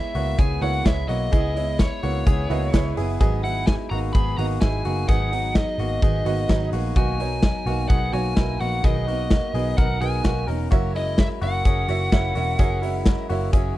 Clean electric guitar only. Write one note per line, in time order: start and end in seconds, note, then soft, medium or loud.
0.00 0.13 G#3 medium
0.00 0.12 E4 medium
0.15 0.39 A#3 medium
0.15 0.39 F#4 medium
0.39 0.63 B3 medium
0.39 0.62 G#4 medium
0.62 0.86 A#3 medium
0.62 0.85 F#4 medium
0.86 1.10 G#3 medium
0.86 1.09 E4 medium
1.09 1.33 A#3 medium
1.09 1.32 F#4 medium
1.33 1.57 B3 medium
1.33 1.56 G#4 loud
1.56 2.01 G#3 medium
1.56 2.00 E4 medium
2.03 2.27 A#3 medium
2.03 2.26 F#4 medium
2.27 2.50 B3 medium
2.27 2.50 G#4 medium
2.50 2.74 A#3 medium
2.50 2.73 F#4 medium
2.74 2.97 G#3 medium
2.74 2.97 E4 medium
2.97 3.20 B3 medium
2.97 3.19 G#4 medium
3.21 3.44 B3 medium
3.21 3.43 G#4 loud
3.44 3.88 G#3 medium
3.44 3.88 E4 medium
3.91 4.15 A#3 medium
3.91 4.15 F#4 medium
4.15 4.39 B3 medium
4.15 4.38 G#4 medium
4.39 4.62 A#3 medium
4.39 4.61 F#4 medium
4.62 4.85 G#3 medium
4.62 4.85 E4 medium
4.85 5.09 A#3 medium
4.85 5.09 F#4 medium
5.09 5.32 B3 medium
5.09 5.32 G#4 loud
5.33 5.77 F#3 medium
5.33 5.76 D#4 medium
5.80 6.03 A#3 medium
5.80 6.03 F#4 medium
6.03 6.27 B3 medium
6.03 6.26 G#4 medium
6.26 6.50 A#3 medium
6.26 6.49 F#4 medium
6.50 6.73 F#3 medium
6.50 6.73 D#4 medium
6.73 6.96 A#3 medium
6.73 6.95 F#4 medium
6.97 7.20 A#3 medium
6.97 7.20 F#4 loud
7.20 7.64 F#3 medium
7.20 7.64 D#4 medium
7.66 7.90 A#3 medium
7.66 7.89 F#4 medium
7.90 8.14 B3 medium
7.90 8.13 G#4 medium
8.14 8.36 A#3 medium
8.14 8.36 F#4 loud
8.37 8.60 A#3 medium
8.37 8.60 E4 medium
8.61 8.85 A#3 medium
8.61 8.84 F#4 medium
8.84 9.08 B3 medium
8.84 9.07 G#4 loud
9.08 9.52 A#3 medium
9.08 9.52 F#4 medium
9.55 9.78 B3 medium
9.55 9.78 G#4 medium
9.78 10.01 D#4 medium
9.78 10.01 A#4 medium
10.01 10.25 B3 medium
10.01 10.24 G#4 medium
10.25 10.48 A#3 medium
10.25 10.47 F#4 medium
10.47 10.71 C#4 medium
10.47 10.70 A#4 medium
10.71 10.95 A#3 medium
10.71 10.95 F#4 loud
10.95 11.40 G#3 medium
10.95 11.39 E4 medium
11.42 11.66 A#3 medium
11.42 11.65 F#4 medium
11.65 11.89 C#4 medium
11.65 11.88 G#4 medium
11.89 12.12 A#3 medium
11.89 12.12 F#4 medium
12.12 12.35 A#3 medium
12.12 12.35 E4 medium
12.35 12.60 A#3 medium
12.35 12.59 F#4 medium
12.59 12.83 C#4 medium
12.59 12.82 G#4 loud
12.82 13.27 G#3 medium
12.82 13.27 E4 medium
13.30 13.54 A#3 medium
13.30 13.53 F#4 medium
13.53 13.77 C#4 medium
13.53 13.76 G#4 medium